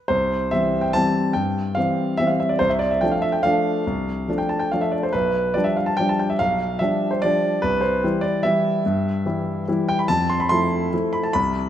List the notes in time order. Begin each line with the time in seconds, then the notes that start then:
0.08 C2 C5
0.51 E3 G3 C4 E5
0.81 G5
0.93 E3 G3 C4 A5
1.33 G2 G5
1.75 E3 G3 C4 F5
2.17 E3 G3 C4 E5
2.27 F5
2.40 E5
2.49 D5
2.59 C2 C5
2.69 E5
2.79 D5
2.91 E5
3.01 F3 A3 D4 G5
3.11 F5
3.22 E5
3.32 G5
3.43 F3 A3 D4 F5
3.87 C2
4.28 F3 A3 D4
4.38 G5
4.49 A5
4.59 G5
4.72 F3 A3 D4 F5
4.81 E5
4.92 D5
5.03 C5
5.13 B1 B4
5.54 F3 G3 D4 D5
5.64 E5
5.76 F5
5.86 A5
5.97 F3 G3 D4 G5
6.09 A5
6.19 G5
6.30 E5
6.39 B1 F5
6.79 F3 G3 D4 E5
7.11 C5
7.22 F3 G3 D4 D5
7.62 C2 B4
7.81 C5
8.03 E3 G3 E4
8.21 D5
8.43 E3 G3 E4 E5
8.86 G2
9.25 E3 G3 E4
9.68 E3 G3 E4
9.88 G5
9.99 B5
10.08 F2 A5
10.29 C6
10.40 B5
10.49 F3 A3 E4 C6
10.93 F3 A3 E4
11.13 B5
11.23 A5
11.33 C2 B5